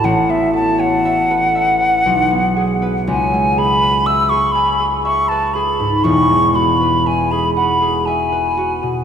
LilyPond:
<<
  \new Staff \with { instrumentName = "Flute" } { \time 3/4 \key b \dorian \tempo 4 = 60 fis''16 e''16 a''16 fis''2~ fis''16 | \key cis \minor gis''8 b''8 e'''16 cis'''16 b''16 r16 cis'''16 a''16 b''8 | cis'''8 b''8 gis''16 b''16 b''8 gis''4 | }
  \new Staff \with { instrumentName = "Harp" } { \time 3/4 \key b \dorian <a,, a fis' a' cis'' fis''>16 b16 a'16 cis''16 e''16 b'16 e''16 b'16 b,,16 b16 gis'16 b'16 | \key cis \minor cis,16 gis16 gis'16 b'16 e''16 gis'16 gis''16 gis'16 e''16 b'16 gis'16 gis,16 | <e,, e,>16 gis16 fis'16 b'16 e''16 gis'16 fis''16 gis'16 e''16 b'16 fis'16 b,16 | }
>>